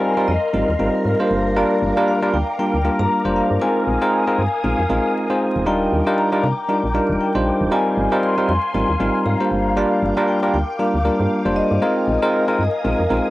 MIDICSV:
0, 0, Header, 1, 5, 480
1, 0, Start_track
1, 0, Tempo, 512821
1, 1463, Time_signature, 4, 2, 24, 8
1, 12450, End_track
2, 0, Start_track
2, 0, Title_t, "String machine"
2, 0, Program_c, 0, 50
2, 0, Note_on_c, 0, 70, 81
2, 0, Note_on_c, 0, 77, 75
2, 0, Note_on_c, 0, 82, 78
2, 0, Note_on_c, 0, 84, 94
2, 1206, Note_off_c, 0, 84, 0
2, 1223, Note_on_c, 0, 86, 89
2, 3346, Note_off_c, 0, 77, 0
2, 3346, Note_off_c, 0, 82, 0
2, 3361, Note_off_c, 0, 86, 0
2, 3384, Note_on_c, 0, 77, 81
2, 3384, Note_on_c, 0, 80, 78
2, 3384, Note_on_c, 0, 87, 95
2, 5284, Note_off_c, 0, 77, 0
2, 5284, Note_off_c, 0, 80, 0
2, 5284, Note_off_c, 0, 87, 0
2, 5304, Note_on_c, 0, 79, 76
2, 5304, Note_on_c, 0, 86, 92
2, 7204, Note_off_c, 0, 79, 0
2, 7204, Note_off_c, 0, 86, 0
2, 7222, Note_on_c, 0, 80, 75
2, 7222, Note_on_c, 0, 84, 95
2, 7223, Note_on_c, 0, 77, 79
2, 8886, Note_off_c, 0, 80, 0
2, 8886, Note_off_c, 0, 84, 0
2, 8902, Note_on_c, 0, 86, 89
2, 8903, Note_on_c, 0, 79, 75
2, 11026, Note_off_c, 0, 70, 0
2, 11041, Note_off_c, 0, 86, 0
2, 11042, Note_off_c, 0, 79, 0
2, 11063, Note_on_c, 0, 70, 85
2, 11063, Note_on_c, 0, 80, 74
2, 11064, Note_on_c, 0, 87, 93
2, 12450, Note_off_c, 0, 70, 0
2, 12450, Note_off_c, 0, 77, 0
2, 12450, Note_off_c, 0, 80, 0
2, 12450, Note_off_c, 0, 87, 0
2, 12450, End_track
3, 0, Start_track
3, 0, Title_t, "Vibraphone"
3, 0, Program_c, 1, 11
3, 0, Note_on_c, 1, 80, 101
3, 263, Note_on_c, 1, 75, 88
3, 273, Note_off_c, 1, 80, 0
3, 1186, Note_off_c, 1, 75, 0
3, 1465, Note_on_c, 1, 74, 93
3, 1945, Note_on_c, 1, 77, 98
3, 1958, Note_off_c, 1, 74, 0
3, 2052, Note_off_c, 1, 77, 0
3, 2186, Note_on_c, 1, 79, 100
3, 2293, Note_off_c, 1, 79, 0
3, 2426, Note_on_c, 1, 79, 110
3, 2776, Note_off_c, 1, 79, 0
3, 2802, Note_on_c, 1, 82, 116
3, 3146, Note_on_c, 1, 77, 94
3, 3154, Note_off_c, 1, 82, 0
3, 3254, Note_off_c, 1, 77, 0
3, 3384, Note_on_c, 1, 80, 109
3, 3750, Note_off_c, 1, 80, 0
3, 3761, Note_on_c, 1, 80, 92
3, 5026, Note_off_c, 1, 80, 0
3, 5305, Note_on_c, 1, 79, 95
3, 5785, Note_on_c, 1, 82, 101
3, 5798, Note_off_c, 1, 79, 0
3, 6007, Note_off_c, 1, 82, 0
3, 6024, Note_on_c, 1, 82, 97
3, 6745, Note_on_c, 1, 79, 94
3, 6765, Note_off_c, 1, 82, 0
3, 7226, Note_on_c, 1, 80, 105
3, 7239, Note_off_c, 1, 79, 0
3, 7705, Note_on_c, 1, 84, 111
3, 7719, Note_off_c, 1, 80, 0
3, 7932, Note_off_c, 1, 84, 0
3, 7944, Note_on_c, 1, 84, 112
3, 8664, Note_on_c, 1, 82, 101
3, 8685, Note_off_c, 1, 84, 0
3, 9145, Note_on_c, 1, 77, 103
3, 9158, Note_off_c, 1, 82, 0
3, 9624, Note_on_c, 1, 79, 94
3, 9638, Note_off_c, 1, 77, 0
3, 9847, Note_off_c, 1, 79, 0
3, 9865, Note_on_c, 1, 79, 85
3, 9972, Note_off_c, 1, 79, 0
3, 10104, Note_on_c, 1, 77, 84
3, 10550, Note_off_c, 1, 77, 0
3, 10821, Note_on_c, 1, 75, 110
3, 12450, Note_off_c, 1, 75, 0
3, 12450, End_track
4, 0, Start_track
4, 0, Title_t, "Tine electric piano"
4, 0, Program_c, 2, 4
4, 0, Note_on_c, 2, 55, 94
4, 0, Note_on_c, 2, 60, 87
4, 0, Note_on_c, 2, 63, 88
4, 0, Note_on_c, 2, 65, 86
4, 0, Note_on_c, 2, 70, 104
4, 126, Note_off_c, 2, 55, 0
4, 127, Note_off_c, 2, 60, 0
4, 127, Note_off_c, 2, 63, 0
4, 128, Note_off_c, 2, 65, 0
4, 128, Note_off_c, 2, 70, 0
4, 158, Note_on_c, 2, 55, 88
4, 159, Note_on_c, 2, 60, 82
4, 160, Note_on_c, 2, 63, 78
4, 161, Note_on_c, 2, 65, 81
4, 162, Note_on_c, 2, 70, 96
4, 291, Note_off_c, 2, 55, 0
4, 292, Note_off_c, 2, 60, 0
4, 292, Note_off_c, 2, 63, 0
4, 293, Note_off_c, 2, 65, 0
4, 294, Note_off_c, 2, 70, 0
4, 501, Note_on_c, 2, 55, 76
4, 502, Note_on_c, 2, 60, 70
4, 503, Note_on_c, 2, 63, 68
4, 504, Note_on_c, 2, 65, 72
4, 505, Note_on_c, 2, 70, 82
4, 661, Note_off_c, 2, 55, 0
4, 662, Note_off_c, 2, 60, 0
4, 662, Note_off_c, 2, 63, 0
4, 663, Note_off_c, 2, 65, 0
4, 663, Note_off_c, 2, 70, 0
4, 741, Note_on_c, 2, 55, 79
4, 742, Note_on_c, 2, 60, 71
4, 743, Note_on_c, 2, 63, 72
4, 745, Note_on_c, 2, 65, 68
4, 746, Note_on_c, 2, 70, 85
4, 1086, Note_off_c, 2, 55, 0
4, 1087, Note_off_c, 2, 60, 0
4, 1088, Note_off_c, 2, 63, 0
4, 1088, Note_off_c, 2, 65, 0
4, 1089, Note_off_c, 2, 70, 0
4, 1119, Note_on_c, 2, 55, 76
4, 1120, Note_on_c, 2, 58, 73
4, 1121, Note_on_c, 2, 62, 72
4, 1122, Note_on_c, 2, 65, 69
4, 1123, Note_on_c, 2, 72, 85
4, 1438, Note_off_c, 2, 55, 0
4, 1438, Note_off_c, 2, 58, 0
4, 1439, Note_off_c, 2, 62, 0
4, 1439, Note_off_c, 2, 65, 0
4, 1440, Note_off_c, 2, 72, 0
4, 1461, Note_on_c, 2, 55, 90
4, 1462, Note_on_c, 2, 58, 85
4, 1463, Note_on_c, 2, 62, 86
4, 1465, Note_on_c, 2, 65, 84
4, 1466, Note_on_c, 2, 70, 105
4, 1807, Note_off_c, 2, 55, 0
4, 1807, Note_off_c, 2, 58, 0
4, 1808, Note_off_c, 2, 62, 0
4, 1808, Note_off_c, 2, 65, 0
4, 1809, Note_off_c, 2, 70, 0
4, 1839, Note_on_c, 2, 55, 94
4, 1840, Note_on_c, 2, 58, 88
4, 1841, Note_on_c, 2, 62, 92
4, 1842, Note_on_c, 2, 65, 89
4, 1843, Note_on_c, 2, 70, 105
4, 2047, Note_off_c, 2, 55, 0
4, 2047, Note_off_c, 2, 58, 0
4, 2048, Note_off_c, 2, 62, 0
4, 2048, Note_off_c, 2, 65, 0
4, 2049, Note_off_c, 2, 70, 0
4, 2078, Note_on_c, 2, 55, 91
4, 2080, Note_on_c, 2, 58, 81
4, 2081, Note_on_c, 2, 62, 80
4, 2082, Note_on_c, 2, 65, 85
4, 2082, Note_on_c, 2, 70, 97
4, 2211, Note_off_c, 2, 55, 0
4, 2212, Note_off_c, 2, 58, 0
4, 2213, Note_off_c, 2, 62, 0
4, 2213, Note_off_c, 2, 65, 0
4, 2214, Note_off_c, 2, 70, 0
4, 2421, Note_on_c, 2, 55, 74
4, 2422, Note_on_c, 2, 58, 72
4, 2423, Note_on_c, 2, 62, 71
4, 2425, Note_on_c, 2, 65, 71
4, 2425, Note_on_c, 2, 70, 84
4, 2581, Note_off_c, 2, 55, 0
4, 2582, Note_off_c, 2, 58, 0
4, 2583, Note_off_c, 2, 62, 0
4, 2583, Note_off_c, 2, 65, 0
4, 2583, Note_off_c, 2, 70, 0
4, 2662, Note_on_c, 2, 55, 77
4, 2663, Note_on_c, 2, 58, 75
4, 2664, Note_on_c, 2, 62, 70
4, 2665, Note_on_c, 2, 65, 74
4, 2666, Note_on_c, 2, 70, 83
4, 3007, Note_off_c, 2, 55, 0
4, 3007, Note_off_c, 2, 58, 0
4, 3008, Note_off_c, 2, 62, 0
4, 3008, Note_off_c, 2, 65, 0
4, 3009, Note_off_c, 2, 70, 0
4, 3039, Note_on_c, 2, 55, 76
4, 3040, Note_on_c, 2, 58, 70
4, 3041, Note_on_c, 2, 62, 69
4, 3043, Note_on_c, 2, 65, 69
4, 3044, Note_on_c, 2, 72, 82
4, 3358, Note_off_c, 2, 55, 0
4, 3358, Note_off_c, 2, 58, 0
4, 3359, Note_off_c, 2, 62, 0
4, 3360, Note_off_c, 2, 65, 0
4, 3360, Note_off_c, 2, 72, 0
4, 3382, Note_on_c, 2, 56, 90
4, 3383, Note_on_c, 2, 60, 86
4, 3383, Note_on_c, 2, 63, 85
4, 3384, Note_on_c, 2, 65, 83
4, 3386, Note_on_c, 2, 70, 100
4, 3727, Note_off_c, 2, 56, 0
4, 3727, Note_off_c, 2, 60, 0
4, 3728, Note_off_c, 2, 63, 0
4, 3728, Note_off_c, 2, 65, 0
4, 3729, Note_off_c, 2, 70, 0
4, 3758, Note_on_c, 2, 56, 93
4, 3759, Note_on_c, 2, 60, 90
4, 3760, Note_on_c, 2, 63, 88
4, 3761, Note_on_c, 2, 65, 86
4, 3762, Note_on_c, 2, 70, 104
4, 3966, Note_off_c, 2, 56, 0
4, 3967, Note_off_c, 2, 60, 0
4, 3967, Note_off_c, 2, 63, 0
4, 3968, Note_off_c, 2, 65, 0
4, 3968, Note_off_c, 2, 70, 0
4, 3998, Note_on_c, 2, 56, 91
4, 3999, Note_on_c, 2, 60, 84
4, 4000, Note_on_c, 2, 63, 80
4, 4001, Note_on_c, 2, 65, 80
4, 4002, Note_on_c, 2, 70, 95
4, 4131, Note_off_c, 2, 56, 0
4, 4132, Note_off_c, 2, 60, 0
4, 4132, Note_off_c, 2, 63, 0
4, 4133, Note_off_c, 2, 65, 0
4, 4133, Note_off_c, 2, 70, 0
4, 4341, Note_on_c, 2, 56, 74
4, 4342, Note_on_c, 2, 60, 67
4, 4343, Note_on_c, 2, 63, 70
4, 4344, Note_on_c, 2, 65, 67
4, 4345, Note_on_c, 2, 70, 83
4, 4501, Note_off_c, 2, 56, 0
4, 4502, Note_off_c, 2, 60, 0
4, 4502, Note_off_c, 2, 63, 0
4, 4503, Note_off_c, 2, 65, 0
4, 4503, Note_off_c, 2, 70, 0
4, 4582, Note_on_c, 2, 56, 79
4, 4582, Note_on_c, 2, 60, 69
4, 4584, Note_on_c, 2, 63, 70
4, 4585, Note_on_c, 2, 65, 69
4, 4586, Note_on_c, 2, 70, 87
4, 4927, Note_off_c, 2, 56, 0
4, 4927, Note_off_c, 2, 60, 0
4, 4928, Note_off_c, 2, 63, 0
4, 4928, Note_off_c, 2, 65, 0
4, 4929, Note_off_c, 2, 70, 0
4, 4958, Note_on_c, 2, 56, 81
4, 4959, Note_on_c, 2, 60, 71
4, 4960, Note_on_c, 2, 63, 69
4, 4961, Note_on_c, 2, 65, 70
4, 4962, Note_on_c, 2, 72, 84
4, 5277, Note_off_c, 2, 56, 0
4, 5278, Note_off_c, 2, 60, 0
4, 5278, Note_off_c, 2, 63, 0
4, 5279, Note_off_c, 2, 65, 0
4, 5279, Note_off_c, 2, 72, 0
4, 5300, Note_on_c, 2, 55, 90
4, 5302, Note_on_c, 2, 62, 82
4, 5303, Note_on_c, 2, 63, 83
4, 5304, Note_on_c, 2, 65, 82
4, 5305, Note_on_c, 2, 70, 98
4, 5646, Note_off_c, 2, 55, 0
4, 5647, Note_off_c, 2, 62, 0
4, 5647, Note_off_c, 2, 63, 0
4, 5648, Note_off_c, 2, 65, 0
4, 5648, Note_off_c, 2, 70, 0
4, 5677, Note_on_c, 2, 55, 92
4, 5679, Note_on_c, 2, 62, 88
4, 5680, Note_on_c, 2, 63, 89
4, 5681, Note_on_c, 2, 65, 89
4, 5682, Note_on_c, 2, 70, 106
4, 5886, Note_off_c, 2, 55, 0
4, 5887, Note_off_c, 2, 62, 0
4, 5887, Note_off_c, 2, 63, 0
4, 5888, Note_off_c, 2, 65, 0
4, 5888, Note_off_c, 2, 70, 0
4, 5917, Note_on_c, 2, 55, 87
4, 5918, Note_on_c, 2, 62, 82
4, 5919, Note_on_c, 2, 63, 83
4, 5920, Note_on_c, 2, 65, 83
4, 5921, Note_on_c, 2, 70, 101
4, 6051, Note_off_c, 2, 55, 0
4, 6051, Note_off_c, 2, 62, 0
4, 6052, Note_off_c, 2, 63, 0
4, 6052, Note_off_c, 2, 65, 0
4, 6053, Note_off_c, 2, 70, 0
4, 6260, Note_on_c, 2, 55, 75
4, 6261, Note_on_c, 2, 62, 70
4, 6263, Note_on_c, 2, 63, 70
4, 6264, Note_on_c, 2, 65, 67
4, 6265, Note_on_c, 2, 70, 85
4, 6421, Note_off_c, 2, 55, 0
4, 6422, Note_off_c, 2, 62, 0
4, 6422, Note_off_c, 2, 63, 0
4, 6423, Note_off_c, 2, 65, 0
4, 6423, Note_off_c, 2, 70, 0
4, 6500, Note_on_c, 2, 55, 77
4, 6501, Note_on_c, 2, 62, 71
4, 6502, Note_on_c, 2, 63, 71
4, 6504, Note_on_c, 2, 65, 71
4, 6505, Note_on_c, 2, 70, 86
4, 6846, Note_off_c, 2, 55, 0
4, 6847, Note_off_c, 2, 62, 0
4, 6847, Note_off_c, 2, 63, 0
4, 6848, Note_off_c, 2, 65, 0
4, 6848, Note_off_c, 2, 70, 0
4, 6878, Note_on_c, 2, 55, 76
4, 6879, Note_on_c, 2, 62, 70
4, 6880, Note_on_c, 2, 63, 74
4, 6881, Note_on_c, 2, 65, 69
4, 6882, Note_on_c, 2, 72, 86
4, 7197, Note_off_c, 2, 55, 0
4, 7198, Note_off_c, 2, 62, 0
4, 7198, Note_off_c, 2, 63, 0
4, 7199, Note_off_c, 2, 65, 0
4, 7199, Note_off_c, 2, 72, 0
4, 7220, Note_on_c, 2, 55, 94
4, 7221, Note_on_c, 2, 60, 81
4, 7223, Note_on_c, 2, 63, 84
4, 7224, Note_on_c, 2, 65, 81
4, 7225, Note_on_c, 2, 70, 100
4, 7566, Note_off_c, 2, 55, 0
4, 7567, Note_off_c, 2, 60, 0
4, 7567, Note_off_c, 2, 63, 0
4, 7568, Note_off_c, 2, 65, 0
4, 7568, Note_off_c, 2, 70, 0
4, 7598, Note_on_c, 2, 55, 98
4, 7599, Note_on_c, 2, 60, 89
4, 7600, Note_on_c, 2, 63, 93
4, 7601, Note_on_c, 2, 65, 86
4, 7602, Note_on_c, 2, 70, 108
4, 7806, Note_off_c, 2, 55, 0
4, 7807, Note_off_c, 2, 60, 0
4, 7807, Note_off_c, 2, 63, 0
4, 7808, Note_off_c, 2, 65, 0
4, 7808, Note_off_c, 2, 70, 0
4, 7838, Note_on_c, 2, 55, 91
4, 7840, Note_on_c, 2, 60, 81
4, 7840, Note_on_c, 2, 63, 83
4, 7842, Note_on_c, 2, 65, 83
4, 7843, Note_on_c, 2, 70, 98
4, 7972, Note_off_c, 2, 55, 0
4, 7972, Note_off_c, 2, 60, 0
4, 7972, Note_off_c, 2, 63, 0
4, 7973, Note_off_c, 2, 65, 0
4, 7974, Note_off_c, 2, 70, 0
4, 8181, Note_on_c, 2, 55, 80
4, 8182, Note_on_c, 2, 60, 69
4, 8183, Note_on_c, 2, 63, 69
4, 8184, Note_on_c, 2, 65, 69
4, 8185, Note_on_c, 2, 70, 84
4, 8341, Note_off_c, 2, 55, 0
4, 8342, Note_off_c, 2, 60, 0
4, 8342, Note_off_c, 2, 63, 0
4, 8343, Note_off_c, 2, 65, 0
4, 8343, Note_off_c, 2, 70, 0
4, 8422, Note_on_c, 2, 55, 78
4, 8422, Note_on_c, 2, 60, 70
4, 8423, Note_on_c, 2, 63, 73
4, 8425, Note_on_c, 2, 65, 74
4, 8426, Note_on_c, 2, 70, 89
4, 8767, Note_off_c, 2, 55, 0
4, 8767, Note_off_c, 2, 60, 0
4, 8768, Note_off_c, 2, 63, 0
4, 8768, Note_off_c, 2, 65, 0
4, 8769, Note_off_c, 2, 70, 0
4, 8799, Note_on_c, 2, 55, 75
4, 8800, Note_on_c, 2, 58, 72
4, 8800, Note_on_c, 2, 62, 71
4, 8802, Note_on_c, 2, 65, 70
4, 8803, Note_on_c, 2, 72, 83
4, 9118, Note_off_c, 2, 55, 0
4, 9118, Note_off_c, 2, 58, 0
4, 9118, Note_off_c, 2, 62, 0
4, 9119, Note_off_c, 2, 65, 0
4, 9120, Note_off_c, 2, 72, 0
4, 9142, Note_on_c, 2, 55, 92
4, 9142, Note_on_c, 2, 58, 84
4, 9144, Note_on_c, 2, 62, 83
4, 9145, Note_on_c, 2, 65, 85
4, 9146, Note_on_c, 2, 70, 101
4, 9487, Note_off_c, 2, 55, 0
4, 9487, Note_off_c, 2, 58, 0
4, 9488, Note_off_c, 2, 62, 0
4, 9488, Note_off_c, 2, 65, 0
4, 9489, Note_off_c, 2, 70, 0
4, 9517, Note_on_c, 2, 55, 102
4, 9519, Note_on_c, 2, 58, 89
4, 9519, Note_on_c, 2, 62, 90
4, 9521, Note_on_c, 2, 65, 87
4, 9522, Note_on_c, 2, 70, 104
4, 9726, Note_off_c, 2, 55, 0
4, 9727, Note_off_c, 2, 58, 0
4, 9727, Note_off_c, 2, 62, 0
4, 9728, Note_off_c, 2, 65, 0
4, 9728, Note_off_c, 2, 70, 0
4, 9758, Note_on_c, 2, 55, 89
4, 9759, Note_on_c, 2, 58, 81
4, 9760, Note_on_c, 2, 62, 81
4, 9761, Note_on_c, 2, 65, 83
4, 9762, Note_on_c, 2, 70, 98
4, 9891, Note_off_c, 2, 55, 0
4, 9892, Note_off_c, 2, 58, 0
4, 9892, Note_off_c, 2, 62, 0
4, 9893, Note_off_c, 2, 65, 0
4, 9894, Note_off_c, 2, 70, 0
4, 10101, Note_on_c, 2, 55, 79
4, 10102, Note_on_c, 2, 58, 68
4, 10103, Note_on_c, 2, 62, 70
4, 10104, Note_on_c, 2, 65, 70
4, 10105, Note_on_c, 2, 70, 87
4, 10261, Note_off_c, 2, 55, 0
4, 10262, Note_off_c, 2, 58, 0
4, 10262, Note_off_c, 2, 62, 0
4, 10263, Note_off_c, 2, 65, 0
4, 10263, Note_off_c, 2, 70, 0
4, 10340, Note_on_c, 2, 55, 82
4, 10341, Note_on_c, 2, 58, 73
4, 10343, Note_on_c, 2, 62, 73
4, 10343, Note_on_c, 2, 65, 71
4, 10344, Note_on_c, 2, 70, 86
4, 10686, Note_off_c, 2, 55, 0
4, 10687, Note_off_c, 2, 58, 0
4, 10687, Note_off_c, 2, 62, 0
4, 10688, Note_off_c, 2, 65, 0
4, 10688, Note_off_c, 2, 70, 0
4, 10719, Note_on_c, 2, 55, 79
4, 10720, Note_on_c, 2, 58, 71
4, 10721, Note_on_c, 2, 62, 73
4, 10722, Note_on_c, 2, 65, 69
4, 10723, Note_on_c, 2, 72, 88
4, 11038, Note_off_c, 2, 55, 0
4, 11038, Note_off_c, 2, 58, 0
4, 11039, Note_off_c, 2, 62, 0
4, 11039, Note_off_c, 2, 65, 0
4, 11040, Note_off_c, 2, 72, 0
4, 11062, Note_on_c, 2, 56, 94
4, 11063, Note_on_c, 2, 60, 80
4, 11064, Note_on_c, 2, 63, 82
4, 11065, Note_on_c, 2, 65, 85
4, 11066, Note_on_c, 2, 70, 100
4, 11407, Note_off_c, 2, 56, 0
4, 11407, Note_off_c, 2, 60, 0
4, 11408, Note_off_c, 2, 63, 0
4, 11408, Note_off_c, 2, 65, 0
4, 11409, Note_off_c, 2, 70, 0
4, 11440, Note_on_c, 2, 56, 96
4, 11441, Note_on_c, 2, 60, 87
4, 11442, Note_on_c, 2, 63, 89
4, 11443, Note_on_c, 2, 65, 88
4, 11444, Note_on_c, 2, 70, 112
4, 11647, Note_off_c, 2, 56, 0
4, 11648, Note_off_c, 2, 60, 0
4, 11648, Note_off_c, 2, 63, 0
4, 11649, Note_off_c, 2, 65, 0
4, 11649, Note_off_c, 2, 70, 0
4, 11679, Note_on_c, 2, 56, 88
4, 11679, Note_on_c, 2, 60, 79
4, 11680, Note_on_c, 2, 63, 82
4, 11682, Note_on_c, 2, 65, 81
4, 11683, Note_on_c, 2, 70, 100
4, 11812, Note_off_c, 2, 56, 0
4, 11812, Note_off_c, 2, 60, 0
4, 11812, Note_off_c, 2, 63, 0
4, 11813, Note_off_c, 2, 65, 0
4, 11814, Note_off_c, 2, 70, 0
4, 12021, Note_on_c, 2, 56, 77
4, 12022, Note_on_c, 2, 60, 70
4, 12023, Note_on_c, 2, 63, 71
4, 12024, Note_on_c, 2, 65, 68
4, 12025, Note_on_c, 2, 70, 82
4, 12181, Note_off_c, 2, 56, 0
4, 12182, Note_off_c, 2, 60, 0
4, 12182, Note_off_c, 2, 63, 0
4, 12183, Note_off_c, 2, 65, 0
4, 12183, Note_off_c, 2, 70, 0
4, 12261, Note_on_c, 2, 56, 78
4, 12262, Note_on_c, 2, 60, 73
4, 12263, Note_on_c, 2, 63, 73
4, 12264, Note_on_c, 2, 65, 72
4, 12265, Note_on_c, 2, 70, 87
4, 12450, Note_off_c, 2, 56, 0
4, 12450, Note_off_c, 2, 60, 0
4, 12450, Note_off_c, 2, 63, 0
4, 12450, Note_off_c, 2, 65, 0
4, 12450, Note_off_c, 2, 70, 0
4, 12450, End_track
5, 0, Start_track
5, 0, Title_t, "FM bass"
5, 0, Program_c, 3, 39
5, 264, Note_on_c, 3, 41, 97
5, 354, Note_off_c, 3, 41, 0
5, 503, Note_on_c, 3, 32, 101
5, 593, Note_off_c, 3, 32, 0
5, 640, Note_on_c, 3, 39, 83
5, 708, Note_off_c, 3, 39, 0
5, 743, Note_on_c, 3, 32, 89
5, 833, Note_off_c, 3, 32, 0
5, 983, Note_on_c, 3, 44, 86
5, 1073, Note_off_c, 3, 44, 0
5, 1223, Note_on_c, 3, 31, 85
5, 1525, Note_off_c, 3, 31, 0
5, 1704, Note_on_c, 3, 31, 98
5, 1793, Note_off_c, 3, 31, 0
5, 2184, Note_on_c, 3, 38, 96
5, 2274, Note_off_c, 3, 38, 0
5, 2561, Note_on_c, 3, 38, 84
5, 2707, Note_off_c, 3, 38, 0
5, 2801, Note_on_c, 3, 43, 100
5, 2868, Note_off_c, 3, 43, 0
5, 3041, Note_on_c, 3, 29, 82
5, 3187, Note_off_c, 3, 29, 0
5, 3281, Note_on_c, 3, 43, 96
5, 3348, Note_off_c, 3, 43, 0
5, 3623, Note_on_c, 3, 34, 98
5, 3713, Note_off_c, 3, 34, 0
5, 4103, Note_on_c, 3, 43, 93
5, 4193, Note_off_c, 3, 43, 0
5, 4343, Note_on_c, 3, 34, 107
5, 4433, Note_off_c, 3, 34, 0
5, 4481, Note_on_c, 3, 41, 84
5, 4548, Note_off_c, 3, 41, 0
5, 4584, Note_on_c, 3, 34, 90
5, 4674, Note_off_c, 3, 34, 0
5, 5201, Note_on_c, 3, 27, 91
5, 5487, Note_off_c, 3, 27, 0
5, 5543, Note_on_c, 3, 39, 100
5, 5633, Note_off_c, 3, 39, 0
5, 6023, Note_on_c, 3, 48, 94
5, 6113, Note_off_c, 3, 48, 0
5, 6400, Note_on_c, 3, 34, 80
5, 6546, Note_off_c, 3, 34, 0
5, 6640, Note_on_c, 3, 27, 102
5, 6708, Note_off_c, 3, 27, 0
5, 6879, Note_on_c, 3, 34, 86
5, 7026, Note_off_c, 3, 34, 0
5, 7120, Note_on_c, 3, 27, 102
5, 7188, Note_off_c, 3, 27, 0
5, 7462, Note_on_c, 3, 32, 103
5, 7553, Note_off_c, 3, 32, 0
5, 7942, Note_on_c, 3, 41, 94
5, 8033, Note_off_c, 3, 41, 0
5, 8183, Note_on_c, 3, 32, 103
5, 8273, Note_off_c, 3, 32, 0
5, 8321, Note_on_c, 3, 39, 88
5, 8388, Note_off_c, 3, 39, 0
5, 8424, Note_on_c, 3, 32, 90
5, 8514, Note_off_c, 3, 32, 0
5, 8663, Note_on_c, 3, 44, 88
5, 8753, Note_off_c, 3, 44, 0
5, 8903, Note_on_c, 3, 31, 82
5, 9205, Note_off_c, 3, 31, 0
5, 9383, Note_on_c, 3, 31, 99
5, 9473, Note_off_c, 3, 31, 0
5, 9863, Note_on_c, 3, 38, 96
5, 9953, Note_off_c, 3, 38, 0
5, 10240, Note_on_c, 3, 38, 85
5, 10386, Note_off_c, 3, 38, 0
5, 10481, Note_on_c, 3, 43, 100
5, 10548, Note_off_c, 3, 43, 0
5, 10720, Note_on_c, 3, 29, 85
5, 10866, Note_off_c, 3, 29, 0
5, 10961, Note_on_c, 3, 43, 99
5, 11028, Note_off_c, 3, 43, 0
5, 11303, Note_on_c, 3, 34, 101
5, 11393, Note_off_c, 3, 34, 0
5, 11783, Note_on_c, 3, 43, 98
5, 11873, Note_off_c, 3, 43, 0
5, 12024, Note_on_c, 3, 34, 102
5, 12114, Note_off_c, 3, 34, 0
5, 12161, Note_on_c, 3, 41, 88
5, 12228, Note_off_c, 3, 41, 0
5, 12263, Note_on_c, 3, 34, 89
5, 12353, Note_off_c, 3, 34, 0
5, 12450, End_track
0, 0, End_of_file